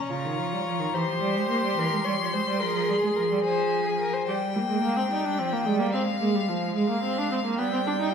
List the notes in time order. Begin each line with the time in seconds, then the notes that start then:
Already playing: C#4 C#5 A#5
0.10 C#3 F4 A#5
0.24 D#3
0.38 F3
0.52 G3
0.66 F3
0.79 D#3
0.94 E3 G4 C5 C6
1.08 F3
1.21 G3
1.35 G#3
1.49 A#3
1.63 G3
1.77 E3 A#4
1.92 G#3
2.05 G3 C#5
2.20 F3
2.33 G#3 C5
2.47 G3
2.60 F3 G#4 A#4
2.75 F3
2.88 G3 G#4
3.03 G#3
3.16 F3 A#4
3.31 G3
3.43 F3 C5 G#5
3.85 G#4
4.00 A#4
4.14 C5
4.27 G3 G4 G5
4.55 G3 A#3
4.69 G#3
4.82 G#3 A#3
4.96 C4
5.11 G3 D#4
5.24 D4
5.38 F3 C4
5.52 A#3
5.66 G3 G#3
5.79 A#3
5.92 G#3 C4 F5
6.21 G#3 A#3
6.35 G3
6.49 F3 G#3
6.76 G#3 F5
6.90 A#3
7.04 C4
7.18 D4
7.31 C4
7.45 A#3
7.58 G3 B3 G5
7.73 C4
7.86 D4
8.00 D#4